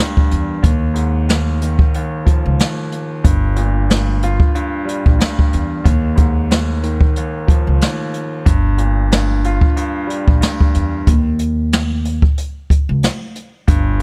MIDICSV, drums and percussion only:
0, 0, Header, 1, 2, 480
1, 0, Start_track
1, 0, Key_signature, -2, "minor"
1, 0, Tempo, 652174
1, 469, Time_signature, 4, 2, 24, 8
1, 10322, End_track
2, 0, Start_track
2, 0, Title_t, "Drums"
2, 0, Note_on_c, 9, 38, 109
2, 71, Note_off_c, 9, 38, 0
2, 126, Note_on_c, 9, 36, 91
2, 200, Note_off_c, 9, 36, 0
2, 228, Note_on_c, 9, 42, 70
2, 302, Note_off_c, 9, 42, 0
2, 468, Note_on_c, 9, 42, 104
2, 469, Note_on_c, 9, 36, 108
2, 542, Note_off_c, 9, 42, 0
2, 543, Note_off_c, 9, 36, 0
2, 702, Note_on_c, 9, 42, 76
2, 775, Note_off_c, 9, 42, 0
2, 948, Note_on_c, 9, 42, 78
2, 956, Note_on_c, 9, 38, 110
2, 1022, Note_off_c, 9, 42, 0
2, 1029, Note_off_c, 9, 38, 0
2, 1188, Note_on_c, 9, 42, 79
2, 1262, Note_off_c, 9, 42, 0
2, 1316, Note_on_c, 9, 36, 91
2, 1390, Note_off_c, 9, 36, 0
2, 1428, Note_on_c, 9, 42, 77
2, 1501, Note_off_c, 9, 42, 0
2, 1668, Note_on_c, 9, 36, 83
2, 1673, Note_on_c, 9, 42, 72
2, 1742, Note_off_c, 9, 36, 0
2, 1746, Note_off_c, 9, 42, 0
2, 1908, Note_on_c, 9, 42, 87
2, 1917, Note_on_c, 9, 38, 106
2, 1982, Note_off_c, 9, 42, 0
2, 1991, Note_off_c, 9, 38, 0
2, 2148, Note_on_c, 9, 42, 68
2, 2222, Note_off_c, 9, 42, 0
2, 2388, Note_on_c, 9, 42, 104
2, 2389, Note_on_c, 9, 36, 109
2, 2462, Note_off_c, 9, 42, 0
2, 2463, Note_off_c, 9, 36, 0
2, 2622, Note_on_c, 9, 42, 76
2, 2695, Note_off_c, 9, 42, 0
2, 2869, Note_on_c, 9, 42, 74
2, 2876, Note_on_c, 9, 38, 117
2, 2942, Note_off_c, 9, 42, 0
2, 2949, Note_off_c, 9, 38, 0
2, 3109, Note_on_c, 9, 42, 78
2, 3182, Note_off_c, 9, 42, 0
2, 3236, Note_on_c, 9, 36, 91
2, 3310, Note_off_c, 9, 36, 0
2, 3349, Note_on_c, 9, 42, 77
2, 3422, Note_off_c, 9, 42, 0
2, 3594, Note_on_c, 9, 42, 77
2, 3668, Note_off_c, 9, 42, 0
2, 3724, Note_on_c, 9, 36, 92
2, 3797, Note_off_c, 9, 36, 0
2, 3828, Note_on_c, 9, 42, 89
2, 3837, Note_on_c, 9, 38, 107
2, 3902, Note_off_c, 9, 42, 0
2, 3911, Note_off_c, 9, 38, 0
2, 3966, Note_on_c, 9, 36, 88
2, 4040, Note_off_c, 9, 36, 0
2, 4068, Note_on_c, 9, 42, 71
2, 4142, Note_off_c, 9, 42, 0
2, 4309, Note_on_c, 9, 36, 105
2, 4309, Note_on_c, 9, 42, 104
2, 4382, Note_off_c, 9, 42, 0
2, 4383, Note_off_c, 9, 36, 0
2, 4542, Note_on_c, 9, 42, 76
2, 4548, Note_on_c, 9, 36, 94
2, 4615, Note_off_c, 9, 42, 0
2, 4621, Note_off_c, 9, 36, 0
2, 4789, Note_on_c, 9, 42, 76
2, 4796, Note_on_c, 9, 38, 111
2, 4862, Note_off_c, 9, 42, 0
2, 4870, Note_off_c, 9, 38, 0
2, 5029, Note_on_c, 9, 42, 76
2, 5102, Note_off_c, 9, 42, 0
2, 5156, Note_on_c, 9, 36, 90
2, 5230, Note_off_c, 9, 36, 0
2, 5269, Note_on_c, 9, 42, 78
2, 5342, Note_off_c, 9, 42, 0
2, 5508, Note_on_c, 9, 36, 88
2, 5513, Note_on_c, 9, 42, 76
2, 5582, Note_off_c, 9, 36, 0
2, 5587, Note_off_c, 9, 42, 0
2, 5748, Note_on_c, 9, 42, 89
2, 5757, Note_on_c, 9, 38, 107
2, 5822, Note_off_c, 9, 42, 0
2, 5831, Note_off_c, 9, 38, 0
2, 5988, Note_on_c, 9, 42, 70
2, 6061, Note_off_c, 9, 42, 0
2, 6228, Note_on_c, 9, 42, 106
2, 6229, Note_on_c, 9, 36, 110
2, 6302, Note_off_c, 9, 36, 0
2, 6302, Note_off_c, 9, 42, 0
2, 6461, Note_on_c, 9, 42, 78
2, 6535, Note_off_c, 9, 42, 0
2, 6708, Note_on_c, 9, 42, 75
2, 6715, Note_on_c, 9, 38, 109
2, 6782, Note_off_c, 9, 42, 0
2, 6789, Note_off_c, 9, 38, 0
2, 6948, Note_on_c, 9, 42, 76
2, 7022, Note_off_c, 9, 42, 0
2, 7076, Note_on_c, 9, 36, 88
2, 7150, Note_off_c, 9, 36, 0
2, 7188, Note_on_c, 9, 42, 80
2, 7261, Note_off_c, 9, 42, 0
2, 7433, Note_on_c, 9, 42, 73
2, 7507, Note_off_c, 9, 42, 0
2, 7563, Note_on_c, 9, 36, 92
2, 7637, Note_off_c, 9, 36, 0
2, 7668, Note_on_c, 9, 42, 87
2, 7677, Note_on_c, 9, 38, 103
2, 7741, Note_off_c, 9, 42, 0
2, 7750, Note_off_c, 9, 38, 0
2, 7806, Note_on_c, 9, 36, 92
2, 7879, Note_off_c, 9, 36, 0
2, 7908, Note_on_c, 9, 42, 68
2, 7981, Note_off_c, 9, 42, 0
2, 8147, Note_on_c, 9, 42, 106
2, 8149, Note_on_c, 9, 36, 105
2, 8221, Note_off_c, 9, 42, 0
2, 8222, Note_off_c, 9, 36, 0
2, 8381, Note_on_c, 9, 42, 75
2, 8455, Note_off_c, 9, 42, 0
2, 8628, Note_on_c, 9, 42, 77
2, 8635, Note_on_c, 9, 38, 116
2, 8702, Note_off_c, 9, 42, 0
2, 8709, Note_off_c, 9, 38, 0
2, 8868, Note_on_c, 9, 42, 77
2, 8942, Note_off_c, 9, 42, 0
2, 8996, Note_on_c, 9, 36, 88
2, 9070, Note_off_c, 9, 36, 0
2, 9108, Note_on_c, 9, 42, 81
2, 9182, Note_off_c, 9, 42, 0
2, 9349, Note_on_c, 9, 36, 87
2, 9353, Note_on_c, 9, 42, 73
2, 9422, Note_off_c, 9, 36, 0
2, 9427, Note_off_c, 9, 42, 0
2, 9588, Note_on_c, 9, 42, 86
2, 9597, Note_on_c, 9, 38, 104
2, 9661, Note_off_c, 9, 42, 0
2, 9671, Note_off_c, 9, 38, 0
2, 9828, Note_on_c, 9, 42, 72
2, 9901, Note_off_c, 9, 42, 0
2, 10068, Note_on_c, 9, 42, 105
2, 10069, Note_on_c, 9, 36, 105
2, 10141, Note_off_c, 9, 42, 0
2, 10143, Note_off_c, 9, 36, 0
2, 10322, End_track
0, 0, End_of_file